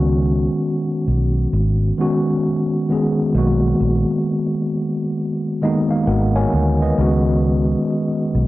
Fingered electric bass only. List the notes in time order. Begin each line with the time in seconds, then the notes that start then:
Already playing: C#2
1.08 B1
1.53 G#1
3.35 B1
3.80 A#1
6.07 G#1
6.53 D2
6.98 C#2
8.35 B1